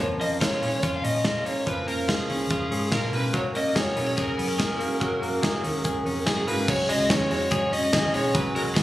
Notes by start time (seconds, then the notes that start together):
Already playing: A#3
0.00 F2 F3 A#3 C#4 F4
0.20 A#3 C#4 F4 D#5, open hi-hat
0.41 F3 A#3 C#4 F4 C#5, kick, snare, closed hi-hat
0.62 A#1 A#3 C#4 F4, open hi-hat
0.83 F2 F4 C#5, kick, closed hi-hat
0.96 F5
1.04 A#2 C#4 D#5, open hi-hat
1.25 F3 A#3 C#4 F4, kick, snare, closed hi-hat
1.46 A#3 C#4 F4 C#5, open hi-hat
1.66 F2 F3 A#3 C#4 F4 B4, kick, closed hi-hat
1.87 A#3 C#4 F4 A#4, open hi-hat
2.08 F3 A#3 C#4 F4 G#4, kick, snare, closed hi-hat
2.29 C#2 A#3 C#4 F4, open hi-hat
2.50 F2 F4, kick, closed hi-hat
2.71 G#2 C#4, open hi-hat
2.92 A#2 F3 A#3 C#4 F4 A#4, kick, snare, closed hi-hat
3.12 B2 A#3 C#4 F4 B4, open hi-hat
3.33 F#2 F#3 G#3 C#4 F#4 A#4 C#5, kick, closed hi-hat
3.54 A#3 C#4 F#4 A#4 D#5, open hi-hat
3.75 G#3 C#4 F#4 G#4 A#4 C#5, kick, snare, closed hi-hat
3.96 B1 B3 C#4 F#4 A#4, open hi-hat
4.06 C#4
4.17 C#2 G#4 A#4, kick, closed hi-hat
4.38 F#2 B3, open hi-hat
4.48 C#4
4.58 G#3 C#4 F#4 G#4 A#4, kick, snare, closed hi-hat
4.79 A#3 C#4 F#4 A#4, open hi-hat
5.00 F#2 F#3 G#3 C#4 F#4 A#4, kick, closed hi-hat
5.22 A#3 C#4 F#4 A#4, open hi-hat
5.43 G#3 C#4 F#4 G#4 A#4, kick, snare, closed hi-hat
5.63 D#2 C#4 F#4 A#4, open hi-hat
5.84 C#2 G#4, kick, closed hi-hat
6.05 F2 C#4, open hi-hat
6.26 F#2 G#3 C#4 F#4 G#4 A#4, kick, snare, closed hi-hat
6.47 G#2 A#3 C#4 F#4 A#4 B4, open hi-hat
6.68 C#2 C#3 F#3 G#3 C#4 F#4 C#5, kick, crash
6.88 G#3 C#4 F#4 D#5, open hi-hat
6.99 C#2
7.10 D#2 C#3 F#3 G#3 C#4 F#4 C#5, kick, snare, closed hi-hat
7.31 F2 G#3 C#4 F#4 C#5, open hi-hat
7.51 F#3 G#3 C#4 F#4 G#4 C#5, kick, closed hi-hat
7.72 G#3 C#4 F#4 D#5, open hi-hat
7.93 D#2 C#3 F#3 G#3 C#4 F#4 G#4, kick, snare, closed hi-hat
8.14 B1 G#3 C#5, open hi-hat
8.34 C#2 C#3 F#3 G#3 C#4 F#4 B4, kick, closed hi-hat
8.55 G#3 C#4 F#4 A#4, open hi-hat
8.65 C#2
8.75 D#2 C#3 F#3 G#3 B3 C#4 F#4 G#4, kick, snare, closed hi-hat